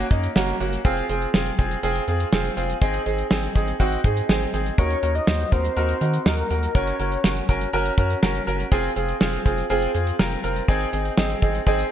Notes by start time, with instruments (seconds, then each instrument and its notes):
0.11 analog synth bass F#2, grand piano A#3 C#4 D#4, kick, closed hi-hat
0.23 closed hi-hat
0.36 analog synth bass F#1, grand piano A#3 C#4 F#4 A#5, snare
0.48 closed hi-hat
0.60 analog synth bass F#1, grand piano A#3 C#4 F#4 F#5, closed hi-hat
0.73 closed hi-hat
0.85 analog synth bass F1, grand piano C4 F4 G#4, kick, closed hi-hat
0.97 closed hi-hat
1.09 analog synth bass F1, grand piano C4 F4 G#4, closed hi-hat
1.22 closed hi-hat
1.34 analog synth bass F1, grand piano C4 F4 G#4, snare
1.46 closed hi-hat
1.59 analog synth bass F1, grand piano C4 F4 G#4, kick, closed hi-hat
1.71 closed hi-hat
1.83 analog synth bass F1, grand piano C4 F4 G#4, closed hi-hat
1.95 closed hi-hat
2.08 analog synth bass F2, grand piano C4 F4 G#4, closed hi-hat
2.20 closed hi-hat
2.32 analog synth bass F1, grand piano C4 F4 G#4, snare
2.45 closed hi-hat
2.57 analog synth bass F1, grand piano C4 F4 G#4, closed hi-hat
2.70 closed hi-hat
2.82 analog synth bass G#1, grand piano C4 D#4 G#4, kick, closed hi-hat
2.94 closed hi-hat
3.06 analog synth bass G#1, grand piano C4 D#4 G#4, closed hi-hat
3.18 closed hi-hat
3.31 analog synth bass G#1, grand piano C4 D#4 G#4, snare
3.43 closed hi-hat
3.55 analog synth bass G#1, grand piano C4 D#4 G#4, kick, closed hi-hat
3.68 closed hi-hat
3.80 analog synth bass G#1, grand piano C4 D#4 F#4, kick, closed hi-hat
3.92 closed hi-hat
4.04 analog synth bass G#2, grand piano C4 D#4 G#4, kick, closed hi-hat
4.17 closed hi-hat
4.29 analog synth bass G#1, grand piano C4 D#4 G#4, snare
4.41 closed hi-hat
4.54 analog synth bass G#1, grand piano C4 D#4 G#4, closed hi-hat
4.66 closed hi-hat
4.78 analog synth bass D#2, grand piano D#4 F#4 A#4, soft synth lead C#5, kick, closed hi-hat
4.90 closed hi-hat
5.03 analog synth bass D#2, grand piano D#4 F#4 A#4, closed hi-hat
5.15 soft synth lead D#5, closed hi-hat
5.27 analog synth bass D#2, grand piano D#4 F#4 C5, snare
5.40 closed hi-hat
5.52 analog synth bass D#2, grand piano D#4 F#4 A#4, soft synth lead C5, kick, closed hi-hat
5.65 closed hi-hat
5.76 analog synth bass D#2, grand piano D#4 F#4 A#4, closed hi-hat
5.89 closed hi-hat
6.01 analog synth bass D#3, grand piano D#4 F#4 A#4, closed hi-hat
6.14 closed hi-hat
6.26 analog synth bass D#2, grand piano D#4 F#4 A#4, soft synth lead A#4, snare
6.38 closed hi-hat
6.50 analog synth bass D#2, grand piano D#4 F#4 A#4, closed hi-hat
6.63 closed hi-hat
6.75 analog synth bass F#1, grand piano C#4 F#4 A#4, soft synth lead C#5, kick, closed hi-hat
6.87 closed hi-hat
6.99 analog synth bass F#1, grand piano C#4 F#4 A#4, closed hi-hat
7.12 closed hi-hat
7.24 analog synth bass F#1, grand piano C#4 F#4 A#4, snare
7.36 closed hi-hat
7.49 analog synth bass F#1, grand piano C#4 F#4 A#4, kick, closed hi-hat
7.61 closed hi-hat
7.73 analog synth bass F#1, grand piano C#4 F#4 A#4, closed hi-hat
7.85 closed hi-hat
7.98 analog synth bass F#2, grand piano C#4 F#4 A#4, kick, closed hi-hat
8.10 closed hi-hat
8.22 analog synth bass F#1, grand piano C#4 F#4 A#4, snare
8.35 closed hi-hat
8.47 analog synth bass F#1, grand piano C#4 F#4 A#4, closed hi-hat
8.60 closed hi-hat
8.72 analog synth bass F1, grand piano C4 F4 G#4, kick, closed hi-hat
8.84 closed hi-hat
8.96 analog synth bass F1, grand piano C4 F4 G#4, closed hi-hat
9.09 closed hi-hat
9.21 analog synth bass F1, grand piano C4 F4 G#4, snare
9.33 closed hi-hat
9.46 analog synth bass F1, grand piano C4 F4 G#4, kick, closed hi-hat
9.58 closed hi-hat
9.70 analog synth bass F1, grand piano C4 F4 G#4, closed hi-hat
9.82 closed hi-hat
9.94 analog synth bass F2, grand piano C4 F4 G#4, closed hi-hat
10.07 closed hi-hat
10.19 analog synth bass F1, grand piano C4 F4 A#4, snare
10.31 closed hi-hat
10.44 analog synth bass F1, grand piano C4 F4 A#4, closed hi-hat
10.56 closed hi-hat
10.68 analog synth bass G#1, grand piano C4 D#4 G#4, kick, closed hi-hat
10.81 closed hi-hat
10.93 analog synth bass G#1, grand piano C4 D#4 G#4, closed hi-hat
11.05 closed hi-hat
11.18 analog synth bass G#1, grand piano C4 D#4 G#4, snare
11.30 closed hi-hat
11.42 analog synth bass G#1, grand piano C4 D#4 G#4, kick, closed hi-hat
11.55 closed hi-hat
11.67 analog synth bass G#1, grand piano C4 D#4 G#4, kick, closed hi-hat
11.79 closed hi-hat